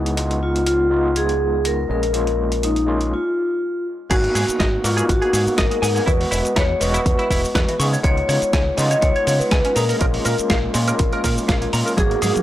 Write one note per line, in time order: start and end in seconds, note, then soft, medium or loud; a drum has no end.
0.00 1.87 C#2 medium
0.00 0.15 G#3 medium
0.00 0.15 B3 medium
0.00 0.15 D#4 medium
0.00 0.15 G#4 medium
0.06 closed hi-hat soft
0.17 0.88 G#3 medium
0.17 0.88 B3 medium
0.17 0.89 D#4 medium
0.17 0.89 F4 medium
0.17 closed hi-hat medium
0.31 closed hi-hat soft
0.43 0.66 F4 medium
0.56 closed hi-hat soft
0.66 1.18 F4 medium
0.66 closed hi-hat medium
0.90 1.86 G#3 medium
0.90 1.87 B3 medium
0.90 1.87 D#4 medium
0.90 1.87 F4 medium
1.16 1.67 G#4 loud
1.16 closed hi-hat medium
1.29 closed hi-hat soft
1.65 1.90 A#4 loud
1.65 closed hi-hat medium
1.89 3.12 A#1 medium
1.89 2.11 G#3 medium
1.89 2.11 A#3 medium
1.89 2.11 C#4 medium
1.89 2.12 G#4 medium
1.89 2.66 A#4 loud
2.03 closed hi-hat soft
2.13 2.84 G#3 medium
2.13 2.85 A#3 medium
2.13 2.85 C#4 medium
2.13 2.86 F4 medium
2.13 closed hi-hat medium
2.27 closed hi-hat soft
2.52 closed hi-hat medium
2.63 3.14 D#4 medium
2.63 closed hi-hat medium
2.76 closed hi-hat soft
2.86 3.12 G#3 medium
2.86 3.12 A#3 medium
2.86 3.12 C#4 medium
2.86 3.13 F4 medium
3.01 closed hi-hat soft
3.14 3.83 F4 medium
4.10 4.27 G#1 loud
4.10 4.81 A#3 medium
4.10 4.82 B3 medium
4.10 4.82 D#4 medium
4.10 4.81 F#4 medium
4.10 4.82 F#4 medium
4.10 4.15 G#4 medium
4.10 kick loud
4.10 closed hi-hat medium
4.10 crash loud
4.10 shaker soft
4.24 closed hi-hat soft
4.35 4.43 G#2 medium
4.35 4.45 G#4 medium
4.35 open hi-hat loud
4.35 shaker medium
4.48 muted fingered electric bass stroke soft
4.48 closed hi-hat soft
4.48 shaker soft
4.60 4.76 G#1 medium
4.60 4.66 D#5 medium
4.60 kick loud
4.60 snare loud
4.60 closed hi-hat medium
4.60 shaker soft
4.84 5.00 G#2 medium
4.84 5.80 A#3 medium
4.84 5.80 B3 medium
4.84 5.81 D#4 medium
4.84 5.10 F4 medium
4.84 5.81 F#4 loud
4.84 open hi-hat loud
4.84 shaker medium
4.97 5.03 G#4 loud
4.97 closed hi-hat medium
4.97 shaker soft
5.09 5.17 G#1 medium
5.09 5.60 F#4 medium
5.09 kick loud
5.09 closed hi-hat medium
5.09 shaker soft
5.22 5.31 G#4 medium
5.22 closed hi-hat soft
5.33 5.46 G#2 medium
5.33 5.43 G#4 medium
5.33 open hi-hat loud
5.33 shaker medium
5.46 muted fingered electric bass stroke soft
5.46 shaker soft
5.58 5.67 G#1 medium
5.58 6.09 A#4 loud
5.58 5.65 D#5 medium
5.58 kick loud
5.58 snare loud
5.58 closed hi-hat medium
5.58 shaker soft
5.71 5.77 G#3 medium
5.71 closed hi-hat medium
5.82 5.99 G#2 medium
5.82 6.04 A#3 medium
5.82 6.04 B3 medium
5.82 6.05 D#4 medium
5.82 6.05 G#4 medium
5.82 5.89 G#5 medium
5.82 open hi-hat loud
5.82 shaker medium
5.95 6.01 G#4 medium
5.95 open hi-hat medium
5.95 shaker soft
6.06 6.23 E2 loud
6.06 6.78 G#3 medium
6.06 6.78 B3 medium
6.06 6.11 E4 loud
6.06 6.79 F#4 medium
6.06 6.58 B4 loud
6.06 6.78 D#5 medium
6.06 kick loud
6.06 closed hi-hat medium
6.06 shaker soft
6.21 open hi-hat medium
6.31 6.40 E1 medium
6.31 6.42 E4 medium
6.31 open hi-hat loud
6.31 shaker medium
6.45 closed hi-hat soft
6.45 shaker soft
6.56 6.73 E2 medium
6.56 6.63 B4 medium
6.56 6.82 C#5 loud
6.56 kick loud
6.56 snare loud
6.56 closed hi-hat medium
6.56 shaker soft
6.80 6.97 E1 medium
6.80 7.76 G#3 loud
6.80 7.77 B3 medium
6.80 7.77 F#4 loud
6.80 7.75 B4 loud
6.80 7.77 D#5 medium
6.80 open hi-hat loud
6.80 shaker medium
6.94 7.00 E4 loud
6.94 closed hi-hat medium
6.94 shaker soft
7.06 7.14 E2 loud
7.06 kick loud
7.06 closed hi-hat medium
7.06 shaker soft
7.19 7.28 E4 medium
7.19 closed hi-hat soft
7.30 7.43 E1 medium
7.30 7.41 E4 medium
7.30 kick medium
7.30 open hi-hat loud
7.30 shaker medium
7.44 muted fingered electric bass stroke soft
7.44 shaker soft
7.55 7.63 E2 medium
7.55 7.62 B4 medium
7.55 kick loud
7.55 snare loud
7.55 closed hi-hat medium
7.55 shaker soft
7.68 7.74 E3 medium
7.68 closed hi-hat medium
7.79 7.96 C#3 medium
7.79 8.01 G#3 medium
7.79 8.02 B3 medium
7.79 8.02 D#4 medium
7.79 8.02 G#4 medium
7.79 7.86 C#6 medium
7.79 open hi-hat loud
7.79 shaker medium
7.93 7.99 C#5 medium
7.93 shaker soft
8.03 8.20 C#2 loud
8.03 8.75 G#3 medium
8.03 8.75 B3 medium
8.03 8.75 D#4 medium
8.03 8.76 F4 medium
8.03 8.80 C#5 loud
8.03 8.08 C#5 loud
8.03 kick loud
8.03 closed hi-hat medium
8.03 shaker soft
8.17 closed hi-hat soft
8.29 8.37 C#3 medium
8.29 8.39 C#5 medium
8.29 open hi-hat loud
8.29 shaker medium
8.42 muted fingered electric bass stroke soft
8.42 closed hi-hat soft
8.42 shaker soft
8.53 8.69 C#2 medium
8.53 8.60 G#5 medium
8.53 kick loud
8.53 snare loud
8.53 closed hi-hat medium
8.53 shaker soft
8.77 8.94 C#3 medium
8.77 9.73 G#3 medium
8.77 9.73 B3 medium
8.77 9.74 D#4 medium
8.77 9.74 F4 loud
8.77 9.03 D#5 loud
8.77 open hi-hat loud
8.77 shaker medium
8.91 8.97 C#5 loud
8.91 closed hi-hat medium
8.91 shaker soft
9.01 9.11 C#2 medium
9.01 9.41 C#5 loud
9.01 kick loud
9.01 closed hi-hat medium
9.01 shaker soft
9.16 9.24 C#5 medium
9.16 closed hi-hat soft
9.27 9.40 C#3 medium
9.27 9.37 C#5 medium
9.27 open hi-hat loud
9.27 shaker medium
9.39 9.77 B4 loud
9.39 muted fingered electric bass stroke soft
9.39 shaker soft
9.51 9.60 C#2 medium
9.51 9.59 G#5 medium
9.51 kick loud
9.51 snare loud
9.51 closed hi-hat medium
9.51 shaker soft
9.65 9.71 C#4 medium
9.65 closed hi-hat medium
9.75 9.92 A#2 medium
9.75 9.98 G#3 medium
9.75 9.98 A#3 medium
9.75 9.98 C#4 medium
9.75 9.99 G#4 medium
9.75 11.69 A#4 medium
9.75 9.83 A#5 medium
9.75 open hi-hat loud
9.75 shaker medium
9.89 9.95 A#4 medium
9.89 open hi-hat medium
9.89 shaker soft
9.99 10.17 A#1 loud
9.99 10.71 G#3 medium
9.99 10.72 A#3 medium
9.99 10.72 C#4 medium
9.99 10.72 F4 medium
9.99 10.05 A#4 loud
9.99 kick loud
9.99 closed hi-hat medium
9.99 shaker soft
10.14 open hi-hat medium
10.25 10.34 A#2 medium
10.25 10.36 A#4 medium
10.25 open hi-hat loud
10.25 shaker medium
10.38 muted fingered electric bass stroke soft
10.38 closed hi-hat soft
10.38 shaker soft
10.50 10.66 A#1 medium
10.50 10.57 F5 medium
10.50 kick loud
10.50 snare loud
10.50 closed hi-hat medium
10.50 shaker soft
10.73 10.91 A#2 medium
10.73 11.70 G#3 medium
10.73 11.70 A#3 medium
10.73 11.70 C#4 medium
10.73 11.71 F4 loud
10.73 open hi-hat loud
10.73 shaker medium
10.88 10.94 A#4 loud
10.88 closed hi-hat medium
10.88 shaker soft
10.99 11.08 A#1 medium
10.99 kick loud
10.99 closed hi-hat medium
10.99 shaker soft
11.13 11.21 A#4 medium
11.13 closed hi-hat soft
11.24 11.37 A#2 medium
11.24 11.34 A#4 medium
11.24 kick medium
11.24 open hi-hat loud
11.24 shaker medium
11.38 muted fingered electric bass stroke soft
11.38 shaker soft
11.48 11.65 A#1 medium
11.48 11.55 F5 medium
11.48 kick loud
11.48 snare loud
11.48 closed hi-hat medium
11.48 shaker soft
11.62 11.67 A#3 medium
11.62 closed hi-hat medium
11.73 11.81 A#2 medium
11.73 11.95 G#3 medium
11.73 11.95 A#3 medium
11.73 11.95 C#4 medium
11.73 11.95 F4 medium
11.73 11.80 A#5 medium
11.73 open hi-hat loud
11.73 shaker medium
11.86 11.92 A#4 medium
11.86 shaker soft
11.97 12.14 G#1 loud
11.97 12.43 A#3 medium
11.97 12.43 B3 medium
11.97 12.43 D#4 medium
11.97 12.43 F#4 medium
11.97 12.02 G#4 loud
11.97 12.43 G#4 medium
11.97 kick loud
11.97 closed hi-hat medium
11.97 muted conga medium
11.97 high conga medium
11.97 shaker soft
12.11 closed hi-hat soft
12.22 12.31 G#2 medium
12.22 12.32 G#4 medium
12.22 open hi-hat loud
12.22 muted conga medium
12.22 shaker medium
12.36 muted fingered electric bass stroke soft
12.36 closed hi-hat soft
12.36 high conga medium
12.36 shaker soft